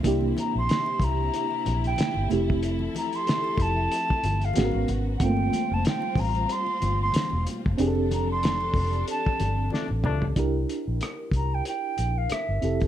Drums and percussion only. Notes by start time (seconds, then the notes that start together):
0.03 kick, closed hi-hat, muted conga
0.21 muted conga, high conga
0.37 closed hi-hat, high conga
0.69 snare, closed hi-hat, muted conga
0.86 muted conga
1.00 kick, closed hi-hat, high conga, low conga
1.34 closed hi-hat, muted conga
1.51 muted conga
1.66 closed hi-hat, high conga
1.84 closed hi-hat
1.96 closed hi-hat, high conga
2.01 snare
2.14 high conga
2.30 closed hi-hat, low conga
2.50 kick
2.63 closed hi-hat
2.79 muted conga, high conga
2.95 closed hi-hat, high conga
3.13 closed hi-hat
3.27 snare, closed hi-hat, muted conga
3.44 muted conga
3.58 kick, closed hi-hat, high conga, low conga
3.92 closed hi-hat
4.08 kick, muted conga
4.23 closed hi-hat, high conga
4.41 closed hi-hat
4.54 closed hi-hat, muted conga, high conga
4.58 snare
4.72 high conga
4.88 closed hi-hat, low conga
5.20 kick, closed hi-hat
5.37 muted conga, high conga
5.53 closed hi-hat, high conga
5.84 snare, closed hi-hat, muted conga
6.02 muted conga
6.15 kick, open hi-hat, high conga, low conga
6.35 closed hi-hat
6.49 closed hi-hat
6.67 muted conga
6.82 closed hi-hat, high conga
7.12 closed hi-hat, high conga
7.16 snare
7.30 high conga
7.46 closed hi-hat, low conga
7.66 kick
7.78 closed hi-hat
7.95 muted conga
8.11 closed hi-hat, high conga
8.43 snare, closed hi-hat, muted conga
8.60 muted conga
8.74 kick, open hi-hat, high conga, low conga
8.93 closed hi-hat
9.08 closed hi-hat
9.25 kick, muted conga
9.40 closed hi-hat, high conga
9.70 snare, muted conga, high conga
9.88 high conga
10.04 mid tom, low conga
10.22 floor tom
10.36 kick, closed hi-hat
10.69 closed hi-hat
11.01 cross-stick, closed hi-hat
11.31 kick, closed hi-hat
11.65 closed hi-hat
11.98 closed hi-hat
12.30 cross-stick, closed hi-hat
12.62 closed hi-hat
12.80 kick, closed hi-hat